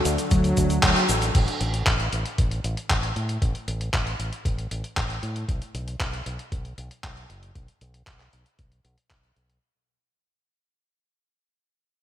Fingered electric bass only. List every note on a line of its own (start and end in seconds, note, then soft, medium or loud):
0.05 0.16 D2 loud
0.31 0.52 D2 medium
0.57 0.78 D2 loud
0.83 0.93 D2 loud
1.09 1.30 A1 medium
1.35 1.45 A1 medium
1.61 1.81 A1 medium
1.87 2.07 A1 medium
2.13 2.23 A1 medium
2.38 2.59 A1 medium
2.64 2.74 A1 loud
2.90 3.11 A1 medium
3.16 3.37 A2 medium
3.42 3.52 A1 loud
3.68 3.88 A1 medium
3.94 4.14 A1 medium
4.19 4.30 A1 medium
4.45 4.66 A1 medium
4.71 4.81 A1 loud
4.97 5.18 A1 medium
5.23 5.43 A2 medium
5.49 5.59 B1 medium
5.74 5.95 B1 medium
6.00 6.21 B1 medium
6.26 6.36 B1 medium
6.52 6.73 B1 medium
6.78 6.88 B1 loud
7.04 7.24 B1 medium
7.30 7.50 F#1 medium
7.55 7.66 B1 medium
7.81 8.02 B1 medium
8.07 8.28 B1 medium
8.33 8.43 B1 medium
8.59 8.80 B1 medium
8.85 8.95 B1 loud
9.11 9.31 B1 medium
9.36 9.57 B1 medium